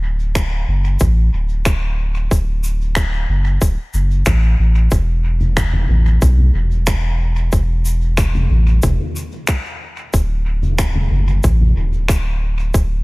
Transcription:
Already playing: D1
0.35 finger snap, kick, shaker
0.68 F#1
1.00 A1, kick, shaker
1.33 D1
1.65 finger snap, kick, shaker
2.31 D1, kick, shaker
2.64 shaker
2.95 finger snap, kick, shaker
3.29 F#1
3.62 D1, kick, shaker
3.94 F#1, shaker
4.26 A1, finger snap, kick, shaker
4.59 A1
4.91 E1, kick, shaker
5.41 mid tom
5.57 finger snap, kick, shaker
5.73 mid tom
5.90 A1
6.22 B1, kick, shaker
6.38 mid tom
6.55 E1
6.87 finger snap, kick, shaker
7.52 E1, kick, shaker
7.85 shaker
8.17 finger snap, kick, shaker
8.35 mid tom
8.51 A1
8.83 E1, kick, mid tom, shaker
9.16 shaker
9.47 finger snap, kick, shaker
10.14 D1, kick, shaker
10.63 mid tom
10.79 finger snap, kick, shaker
10.95 mid tom
11.11 F#1
11.44 A1, kick, shaker
11.61 mid tom
11.77 D1
12.08 finger snap, kick, shaker
12.74 D1, kick, shaker

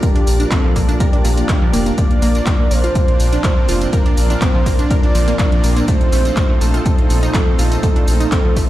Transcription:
Already playing: F3 A#3 D4
0.03 A#2 A#3 D4 F4 G4 A#4 D5, kick, closed hi-hat, tambourine, shaker
0.16 D4, closed hi-hat
0.27 A#1, open hi-hat, tambourine, shaker
0.40 A#2 A#3 D4 F4 A#4 D5, snare, closed hi-hat, tambourine
0.51 C4 A4, kick, snare, clap, closed hi-hat, tambourine, shaker
0.64 F3
0.76 A#1 A#2 A#3 D4 F4 A#4 D5, kick, open hi-hat, tambourine, shaker
0.89 D4, closed hi-hat, tambourine
1.00 G4 A#4, kick, closed hi-hat, tambourine, shaker
1.13 A#2 A#3 D4 F4 A#4 D5, closed hi-hat
1.25 A#1 A#2, open hi-hat, tambourine, shaker
1.37 closed hi-hat, tambourine
1.49 G4, kick, snare, clap, closed hi-hat, tambourine, shaker
1.62 A#2 F3 A#3 D4 F4 A#4 D5
1.73 F1 A#3, open hi-hat, tambourine, shaker
1.86 A#3, snare, closed hi-hat, tambourine
1.98 A#2 A#3 C4 D4 F4 A#4 D5, kick, closed hi-hat, tambourine, shaker
2.11 closed hi-hat
2.22 A#1 A#3, open hi-hat, tambourine, shaker
2.35 A#2 A#3 D4 F4 A#4 D5, snare, closed hi-hat, tambourine
2.46 kick, snare, clap, closed hi-hat, tambourine, shaker
2.59 A#3
2.71 A#1 A#2 A#3 D4 F4 A#4 C5 D5, open hi-hat, tambourine, shaker
2.84 F4, closed hi-hat, tambourine
2.95 kick, closed hi-hat, tambourine, shaker
3.08 A#2 A#3 D4 F4 A#4 D5, closed hi-hat
3.20 A#1, snare, open hi-hat, tambourine, shaker
3.33 D4, snare, closed hi-hat, tambourine
3.44 F3 C5, kick, snare, clap, closed hi-hat, tambourine, shaker
3.57 A#2 A#3 D4 F4 A#4 D5
3.69 F1 F4, open hi-hat, tambourine, shaker
3.81 closed hi-hat, tambourine
3.93 A#2 A#3 D4 F4 A#4 D5, kick, closed hi-hat, tambourine, shaker
4.06 D4, closed hi-hat
4.17 A#1, open hi-hat, tambourine, shaker
4.30 A#2 A#3 D4 F4 A#4 D5, snare, closed hi-hat, tambourine
4.41 C4 C5, kick, snare, clap, closed hi-hat, tambourine, shaker
4.55 F3
4.66 A#1 A#2 A#3 D4 F4 A#4 D5, kick, open hi-hat, tambourine, shaker
4.79 D4, closed hi-hat, tambourine
4.91 A#4 D5, kick, closed hi-hat, tambourine, shaker
5.03 A#2 A#3 D4 F4 A#4 D5, closed hi-hat
5.15 A#1 F3, open hi-hat, tambourine, shaker
5.28 A#3, closed hi-hat, tambourine
5.39 A#4 D5, kick, snare, clap, closed hi-hat, tambourine, shaker
5.52 A#2 F3 A#3 D4 F4 A#4 D5, closed hi-hat
5.64 A#1 A#3, open hi-hat, tambourine, shaker
5.76 A#3, snare, closed hi-hat, tambourine
5.88 A#2 A3 C4 D#4 F4 A4 C5, kick, closed hi-hat, tambourine, shaker
6.01 closed hi-hat
6.12 A#1 A3, open hi-hat, tambourine, shaker
6.25 A#2 C4 D#4 F4 A4 C5, snare, closed hi-hat, tambourine
6.37 kick, snare, clap, closed hi-hat, tambourine, shaker
6.50 A3
6.61 A#1 A#2 A3 C4 D#4 F4 A4 C5, open hi-hat, tambourine, shaker
6.74 F4, closed hi-hat, tambourine
6.86 kick, closed hi-hat, tambourine, shaker
6.98 A#2 C4 D#4 F4 A4 C5, closed hi-hat
7.10 A#1, snare, open hi-hat, tambourine, shaker
7.23 D#4, snare, closed hi-hat, tambourine
7.34 F3 A4, kick, snare, clap, closed hi-hat, tambourine, shaker
7.47 A#2 C4 D#4 F4 A4 C5
7.59 A#1 F4, open hi-hat, tambourine, shaker
7.72 closed hi-hat, tambourine
7.83 A#2 C4 D#4 F4 A4 C5, kick, closed hi-hat, tambourine, shaker
7.96 D4, closed hi-hat
8.08 A#1, open hi-hat, tambourine, shaker
8.20 A#2 C4 D#4 F4 A4 C5, snare, closed hi-hat, tambourine
8.32 C4 A4, kick, snare, clap, closed hi-hat, tambourine, shaker
8.45 F3
8.56 A#1 A#2 A3 C4 D#4 F4 A4 C5, kick, open hi-hat, tambourine, shaker

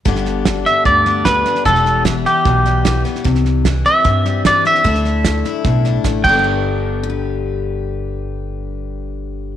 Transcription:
0.05 G1 G2 D3 B3 D4 G4, kick, snare
0.16 snare
0.25 snare
0.45 D3, kick, snare, hi-hat pedal
0.66 D4 E5, snare
0.85 D2 G2 D5, kick, snare
1.05 B3, snare
1.25 B4, kick, snare, hi-hat pedal
1.45 D4, snare
1.55 snare
1.65 E1 E2 E3 G3 B3 G4 A4, kick, snare
1.75 snare
1.85 snare
2.05 E3, kick, snare, hi-hat pedal
2.25 B3 G4, snare
2.45 B1 B2, kick, snare
2.65 G3, snare
2.85 E3, kick, snare, hi-hat pedal
3.05 B3, snare
3.15 snare
3.24 C2 C3, kick, snare
3.35 snare
3.45 snare
3.65 E3, kick, snare, hi-hat pedal
3.85 C4 E5, snare
4.04 G2, kick, snare
4.25 G3, snare
4.45 E3 D5, kick, snare, hi-hat pedal
4.65 C4 E5, snare
4.75 snare
4.84 D2 D3 A3 D4 E4, kick, snare
4.95 snare
5.05 snare
5.24 A3, kick, snare, hi-hat pedal
5.45 E4, snare
5.64 B1 A2, kick, snare
5.85 D4, snare
6.04 A1 A3, kick, snare, hi-hat pedal
6.24 G1 G2 G5, kick, crash
6.29 D3
6.34 B3
6.39 D4
6.44 G4
7.03 G4
7.10 B4

